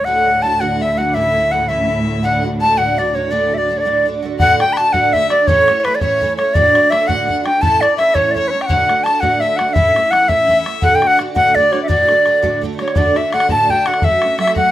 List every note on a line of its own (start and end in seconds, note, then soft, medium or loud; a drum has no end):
0.05 0.26 D2 medium
0.05 4.44 D2 medium
0.05 0.27 A2 medium
0.05 4.44 A2 medium
0.05 0.27 D3 medium
0.05 0.26 A3 medium
0.05 0.25 D4 medium
0.05 0.24 F#4 medium
0.05 0.44 F#5 loud
0.05 0.45 F#5 medium
0.25 0.41 D3 soft
0.25 0.42 A3 soft
0.25 0.44 D4 soft
0.25 0.43 F#4 soft
0.42 0.60 D3 medium
0.42 0.60 A3 medium
0.42 0.60 D4 medium
0.42 0.59 F#4 medium
0.42 0.62 A5 medium
0.60 0.82 D2 medium
0.60 0.82 A2 soft
0.60 0.78 D3 medium
0.60 0.80 A3 medium
0.60 0.81 D4 medium
0.60 0.81 F#4 medium
0.60 0.79 F#5 medium
0.60 0.83 F#5 medium
0.80 0.97 D3 medium
0.80 0.98 A3 medium
0.80 0.97 D4 medium
0.80 0.96 F#4 medium
0.80 0.99 E5 medium
0.80 1.00 E5 medium
0.97 1.15 D3 soft
0.97 1.15 A3 soft
0.97 1.15 D4 soft
0.97 1.15 F#4 soft
0.97 1.16 F#5 medium
0.97 1.08 F#5 medium
1.09 1.17 D5 medium
1.14 1.35 A2 medium
1.14 1.35 E3 medium
1.14 1.36 A3 medium
1.14 1.35 C#4 medium
1.14 1.33 E4 medium
1.14 1.53 E5 loud
1.14 1.54 E5 medium
1.35 1.51 A3 soft
1.35 1.52 C#4 soft
1.35 1.52 E4 soft
1.51 1.69 E3 medium
1.51 1.68 A3 medium
1.51 1.68 C#4 medium
1.51 1.67 E4 medium
1.51 1.70 F#5 loud
1.51 1.69 F#5 medium
1.68 1.90 A2 soft
1.68 1.87 E3 medium
1.68 1.89 A3 medium
1.68 1.89 C#4 medium
1.68 1.89 E4 medium
1.68 1.99 E5 medium
1.68 2.26 E5 medium
1.88 2.06 E3 medium
1.88 2.07 A3 medium
1.88 2.06 C#4 medium
1.88 2.05 E4 medium
2.06 2.23 A3 soft
2.06 2.24 C#4 soft
2.06 2.23 E4 soft
2.23 2.43 D2 medium
2.23 2.44 A2 medium
2.23 2.44 D3 medium
2.23 2.44 A3 medium
2.23 2.43 D4 medium
2.23 2.42 F#4 medium
2.23 2.44 F#5 medium
2.43 2.59 D3 soft
2.43 2.60 A3 soft
2.43 2.61 D4 soft
2.43 2.60 F#4 soft
2.60 2.77 D3 medium
2.60 2.77 A3 medium
2.60 2.76 D4 medium
2.60 2.76 F#4 medium
2.60 2.79 A5 medium
2.60 2.79 A5 loud
2.77 2.98 D2 soft
2.77 2.98 A2 soft
2.77 2.96 D3 medium
2.77 2.97 A3 medium
2.77 2.98 D4 medium
2.77 2.97 F#4 medium
2.77 3.00 F#5 medium
2.97 3.14 D3 medium
2.97 3.15 A3 medium
2.97 3.14 D4 medium
2.97 3.12 F#4 medium
2.97 3.16 D5 medium
3.13 3.31 D3 soft
3.13 3.30 A3 soft
3.13 3.31 D4 soft
3.13 3.31 F#4 soft
3.13 3.33 C#5 medium
3.13 3.32 C#5 medium
3.31 3.51 D2 medium
3.31 3.51 A2 medium
3.31 3.52 D3 medium
3.31 3.52 A3 medium
3.31 3.51 D4 medium
3.31 3.50 F#4 medium
3.31 3.56 D5 medium
3.51 3.67 D3 soft
3.51 3.68 A3 soft
3.51 3.69 D4 soft
3.51 3.68 F#4 soft
3.51 3.59 E5 medium
3.57 3.78 D5 medium
3.57 3.79 D5 medium
3.68 3.85 D3 soft
3.68 3.85 A3 medium
3.68 3.85 D4 medium
3.68 3.84 F#4 medium
3.77 3.82 C#5 medium
3.77 4.04 D5 soft
3.77 4.06 D5 medium
3.85 4.07 D2 medium
3.85 4.06 A2 medium
3.85 4.04 D3 medium
3.85 4.05 A3 medium
3.85 4.06 D4 medium
3.85 4.05 F#4 medium
4.05 4.22 D3 medium
4.05 4.23 A3 medium
4.05 4.22 D4 medium
4.05 4.21 F#4 medium
4.22 4.40 D3 soft
4.22 4.40 A3 soft
4.22 4.40 D4 soft
4.22 4.39 F#4 medium
4.39 4.60 D2 medium
4.39 4.60 A2 medium
4.39 4.60 D3 medium
4.39 4.61 A3 medium
4.39 4.60 D4 medium
4.39 4.59 F#4 medium
4.39 4.62 F#5 medium
4.39 4.58 F#5 loud
4.39 bodhran medium
4.60 4.75 D3 soft
4.60 4.76 A3 soft
4.60 4.77 D4 soft
4.60 4.77 F#4 soft
4.60 4.74 G5 loud
4.60 4.78 G5 medium
4.60 bodhran medium
4.73 4.93 D3 medium
4.73 4.94 A5 loud
4.73 4.78 B5 medium
4.77 4.93 A3 medium
4.77 4.93 D4 medium
4.77 4.92 F#4 medium
4.77 4.95 A5 medium
4.77 bodhran medium
4.93 5.15 D2 medium
4.93 5.14 A2 medium
4.93 5.12 D3 soft
4.93 5.13 A3 medium
4.93 5.14 D4 medium
4.93 5.13 F#4 medium
4.93 5.15 F#5 loud
4.93 5.12 F#5 medium
4.93 bodhran medium
5.13 5.30 D3 medium
5.13 5.31 A3 medium
5.13 5.30 D4 medium
5.13 5.28 F#4 medium
5.13 5.32 E5 medium
5.13 5.30 E5 loud
5.13 bodhran soft
5.30 5.48 D3 soft
5.30 5.47 A3 soft
5.30 5.48 D4 medium
5.30 5.47 F#4 medium
5.30 5.48 D5 loud
5.30 5.49 D5 medium
5.30 bodhran medium
5.47 5.67 A2 medium
5.47 5.68 E3 medium
5.47 5.68 A3 medium
5.47 5.68 C#4 medium
5.47 5.66 E4 medium
5.47 5.80 C#5 loud
5.47 5.67 C#5 medium
5.47 bodhran medium
5.67 5.84 A3 soft
5.67 5.85 C#4 soft
5.67 5.84 E4 medium
5.67 5.85 C#5 medium
5.67 bodhran medium
5.80 6.00 B4 medium
5.80 5.86 C#5 medium
5.84 6.01 E3 medium
5.84 6.01 A3 medium
5.84 6.01 C#4 medium
5.84 6.00 E4 medium
5.84 5.97 B4 loud
5.84 bodhran medium
5.95 6.02 D5 medium
6.00 6.22 A2 medium
6.00 6.19 E3 medium
6.00 6.21 A3 medium
6.00 6.21 C#4 medium
6.00 6.21 E4 medium
6.00 6.36 C#5 loud
6.00 6.35 C#5 medium
6.00 bodhran medium
6.21 6.38 E3 medium
6.21 6.38 A3 medium
6.21 6.38 C#4 medium
6.21 6.36 E4 medium
6.21 bodhran soft
6.37 6.55 A3 soft
6.37 6.55 C#4 soft
6.37 6.54 E4 medium
6.37 6.55 C#5 medium
6.37 6.57 C#5 medium
6.37 bodhran medium
6.54 6.74 D2 medium
6.54 6.75 A2 medium
6.54 6.75 D3 medium
6.54 6.75 A3 medium
6.54 6.75 D4 medium
6.54 6.74 F#4 medium
6.54 6.92 D5 loud
6.54 6.92 D5 medium
6.54 bodhran medium
6.75 6.89 D3 soft
6.75 6.91 A3 soft
6.75 6.92 D4 soft
6.75 6.91 F#4 medium
6.75 bodhran medium
6.90 7.08 D3 medium
6.90 7.07 A3 medium
6.90 7.07 D4 medium
6.90 7.06 F#4 medium
6.90 7.09 E5 loud
6.90 7.07 E5 medium
6.90 bodhran medium
7.07 7.29 D2 medium
7.07 7.29 A2 medium
7.07 7.26 D3 medium
7.07 7.27 A3 medium
7.07 7.28 D4 medium
7.07 7.28 F#4 medium
7.07 7.44 F#5 medium
7.07 7.26 F#5 medium
7.07 bodhran medium
7.27 7.44 D3 medium
7.27 7.45 A3 medium
7.27 7.44 D4 medium
7.27 7.42 F#4 medium
7.27 7.40 F#5 loud
7.27 bodhran soft
7.40 7.61 F#4 soft
7.40 7.46 F#5 soft
7.45 7.61 D3 soft
7.45 7.61 A3 soft
7.45 7.62 D4 medium
7.45 7.60 G5 medium
7.45 7.63 G5 loud
7.45 bodhran medium
7.61 7.81 A2 medium
7.61 7.82 E3 medium
7.61 7.82 A3 medium
7.61 7.81 C#4 medium
7.61 7.79 E4 medium
7.61 7.84 A5 medium
7.61 7.82 A5 loud
7.61 bodhran medium
7.80 7.97 A3 soft
7.80 7.98 C#4 soft
7.80 7.98 E4 soft
7.80 7.97 D5 loud
7.80 8.00 D5 medium
7.80 bodhran medium
7.97 8.14 E3 medium
7.97 8.14 A3 medium
7.97 8.14 C#4 medium
7.97 8.13 E4 medium
7.97 8.16 E5 loud
7.97 8.18 E5 medium
7.97 bodhran soft
8.14 8.36 A2 medium
8.14 8.33 E3 medium
8.14 8.34 A3 medium
8.14 8.35 C#4 medium
8.14 8.35 E4 medium
8.14 8.32 C#5 loud
8.14 8.35 C#5 medium
8.14 bodhran medium
8.31 8.51 E3 medium
8.31 8.49 C#5 medium
8.31 8.36 D5 medium
8.35 8.52 A3 medium
8.35 8.52 C#4 medium
8.35 8.50 E4 medium
8.35 8.71 C#5 medium
8.35 bodhran soft
8.48 8.68 E4 soft
8.48 8.52 B4 medium
8.48 8.63 C#5 medium
8.53 8.69 A3 soft
8.53 8.69 C#4 soft
8.61 8.68 G5 medium
8.61 bodhran medium
8.66 8.88 D2 medium
8.66 8.89 A2 medium
8.66 8.89 D3 medium
8.66 8.89 A3 medium
8.66 8.87 D4 medium
8.66 9.05 F#5 loud
8.66 9.04 F#5 medium
8.66 bodhran medium
8.70 8.86 F#4 medium
8.87 9.03 D3 soft
8.87 9.05 A3 medium
8.87 9.05 D4 soft
8.87 9.05 F#4 soft
8.87 bodhran medium
9.04 9.22 D3 medium
9.04 9.21 A3 medium
9.04 9.21 D4 medium
9.04 9.20 F#4 medium
9.04 9.22 A5 loud
9.04 9.23 A5 medium
9.04 bodhran medium
9.20 9.43 D2 medium
9.20 9.43 A2 medium
9.20 9.40 D3 medium
9.20 9.41 A3 medium
9.20 9.42 D4 medium
9.20 9.42 F#4 medium
9.20 9.42 F#5 loud
9.20 9.43 F#5 medium
9.20 bodhran medium
9.40 9.58 D3 medium
9.40 9.59 A3 medium
9.40 9.58 D4 medium
9.40 9.58 E5 medium
9.40 9.59 E5 medium
9.45 9.57 F#4 medium
9.56 9.75 A3 medium
9.56 9.76 D4 medium
9.56 9.75 F#4 medium
9.56 9.68 F#5 medium
9.56 9.74 F#5 medium
9.56 bodhran medium
9.61 9.75 D3 soft
9.68 9.75 F#5 medium
9.73 9.95 A2 medium
9.73 9.95 E3 medium
9.73 9.95 A3 medium
9.73 9.95 C#4 medium
9.73 9.93 E4 medium
9.73 10.12 E5 loud
9.73 10.14 E5 medium
9.73 bodhran medium
9.94 10.11 A3 soft
9.94 10.12 C#4 soft
9.94 10.12 E4 soft
9.94 bodhran medium
10.11 10.28 E3 medium
10.11 10.28 A3 medium
10.11 10.28 C#4 medium
10.11 10.27 E4 medium
10.11 10.30 F#5 loud
10.11 10.31 F#5 medium
10.11 bodhran medium
10.28 10.50 A2 medium
10.28 10.46 E3 medium
10.28 10.47 A3 medium
10.28 10.48 C#4 medium
10.28 10.48 E4 medium
10.28 10.58 E5 loud
10.28 10.85 E5 medium
10.28 bodhran medium
10.47 10.65 E3 medium
10.47 10.65 A3 medium
10.47 10.65 C#4 medium
10.47 10.63 E4 medium
10.47 bodhran soft
10.64 10.82 A3 soft
10.64 10.82 C#4 soft
10.64 10.81 E4 medium
10.64 bodhran medium
10.81 11.02 D2 medium
10.81 11.02 A2 medium
10.81 11.02 D3 medium
10.81 11.02 A3 medium
10.81 11.01 D4 medium
10.81 11.00 F#4 medium
10.81 10.97 F#5 loud
10.81 10.96 F#5 medium
10.81 bodhran medium
10.95 11.09 G5 medium
11.01 11.17 D3 soft
11.01 11.18 A3 soft
11.01 11.19 D4 soft
11.01 11.18 F#4 medium
11.01 bodhran medium
11.07 11.19 F#5 loud
11.07 11.18 F#5 medium
11.18 11.35 D3 medium
11.18 11.35 A3 medium
11.18 11.34 D4 medium
11.18 11.33 F#4 medium
11.18 bodhran medium
11.35 11.56 D2 medium
11.35 11.56 A2 medium
11.35 11.53 D3 medium
11.35 11.55 A3 medium
11.35 11.55 D4 medium
11.35 11.55 F#4 medium
11.35 11.56 F#5 loud
11.35 11.55 F#5 medium
11.35 bodhran medium
11.55 11.72 D3 medium
11.55 11.72 A3 medium
11.55 11.72 D4 medium
11.55 11.70 F#4 medium
11.55 11.73 D5 medium
11.55 11.87 D5 medium
11.55 bodhran soft
11.71 11.88 D3 soft
11.71 11.89 A3 soft
11.71 11.89 D4 medium
11.71 11.89 F#4 medium
11.71 11.82 C#5 medium
11.71 bodhran soft
11.83 11.90 E5 medium
11.88 12.08 D2 medium
11.88 12.09 A2 medium
11.88 12.09 D3 medium
11.88 12.09 A3 medium
11.88 12.09 D4 medium
11.88 12.07 F#4 medium
11.88 12.62 D5 loud
11.88 12.58 D5 medium
11.88 bodhran medium
12.09 12.24 D3 soft
12.09 12.25 A3 soft
12.09 12.26 D4 soft
12.09 12.25 F#4 soft
12.09 bodhran medium
12.25 12.42 D3 medium
12.25 12.42 A3 medium
12.25 12.42 D4 medium
12.25 12.41 F#4 medium
12.25 bodhran soft
12.42 12.63 D2 medium
12.42 12.63 A2 medium
12.42 12.60 D3 medium
12.42 12.62 A3 medium
12.42 12.62 D4 medium
12.42 12.62 F#4 medium
12.42 bodhran medium
12.61 12.79 D3 medium
12.61 12.79 A3 medium
12.61 12.78 D4 medium
12.61 12.77 F#4 medium
12.61 bodhran soft
12.78 12.95 D3 medium
12.78 12.95 A3 soft
12.78 12.96 D4 medium
12.78 12.95 F#4 soft
12.78 12.94 C#5 medium
12.78 12.99 C#5 medium
12.78 bodhran medium
12.88 bodhran medium
12.95 13.15 D2 medium
12.95 13.15 A2 medium
12.95 13.16 D3 medium
12.95 13.16 A3 medium
12.95 13.15 D4 medium
12.95 13.14 F#4 medium
12.95 13.18 D5 medium
12.95 bodhran medium
13.06 bodhran soft
13.15 13.31 D3 soft
13.15 13.32 A3 soft
13.15 13.33 D4 soft
13.15 13.32 F#4 medium
13.15 13.32 E5 medium
13.15 13.35 E5 medium
13.15 bodhran soft
13.32 13.49 D3 medium
13.32 13.49 A3 medium
13.32 13.48 D4 medium
13.32 13.48 F#4 medium
13.32 13.52 F#5 medium
13.32 13.50 F#5 medium
13.32 bodhran medium
13.40 bodhran medium
13.49 13.70 D2 medium
13.49 13.70 A2 medium
13.49 13.68 D3 medium
13.49 13.69 A3 medium
13.49 13.69 D4 medium
13.49 13.69 F#4 medium
13.49 13.89 A5 medium
13.49 13.72 A5 loud
13.49 bodhran medium
13.69 13.85 D3 medium
13.69 13.86 A3 medium
13.69 13.85 D4 medium
13.69 13.84 F#4 medium
13.69 13.89 G5 medium
13.69 bodhran soft
13.85 14.02 D3 soft
13.85 14.02 A3 soft
13.85 14.03 D4 soft
13.85 14.02 F#4 medium
13.85 14.06 F#5 medium
13.85 14.05 F#5 medium
13.85 bodhran medium
13.94 bodhran medium
14.02 14.22 F#3 medium
14.02 14.22 A3 medium
14.02 14.22 C#4 medium
14.02 14.20 F#4 medium
14.02 14.39 E5 medium
14.02 bodhran medium
14.12 bodhran soft
14.22 14.38 A3 soft
14.22 14.39 C#4 soft
14.22 14.38 F#4 soft
14.22 bodhran medium
14.38 14.55 F#3 medium
14.38 14.55 A3 medium
14.38 14.54 C#4 medium
14.38 14.54 F#4 medium
14.38 14.55 E5 medium
14.38 bodhran medium
14.47 bodhran medium
14.55 14.71 F#3 medium
14.55 14.71 A3 medium
14.55 14.71 C#4 medium
14.55 14.71 F#4 medium
14.55 14.71 F#5 medium
14.55 14.71 F#5 loud
14.55 bodhran medium